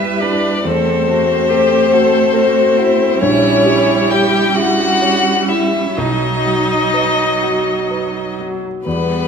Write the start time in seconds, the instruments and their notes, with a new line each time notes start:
Already playing: grand piano E2 B3 E4 G4, viola G3, violin E4 E5, cello B4
0.20 violin D4 D5, grand piano E4
0.65 grand piano E2, viola A3, violin C4 C5, cello A4
1.08 grand piano A3, cello F#4
1.50 cello G4, grand piano A4
1.92 grand piano F#4, cello A4
2.34 cello F#4, grand piano A4
2.78 cello E4, grand piano F#4
3.21 grand piano A#1, viola G3, violin C#4 C#5
3.66 grand piano G3
4.10 violin G4 G5, grand piano C#5
4.54 cello C#4, grand piano E4, violin F#4 F#5
5.02 grand piano C#5
5.49 grand piano E4, violin E4 E5
5.96 grand piano B1, viola F#3, cello D#4, violin D#4 D#5
6.46 grand piano F#3
6.94 grand piano B4
7.43 grand piano F#4
7.91 grand piano B4
8.40 grand piano F#4
8.86 grand piano E2, viola G3, violin B3 B4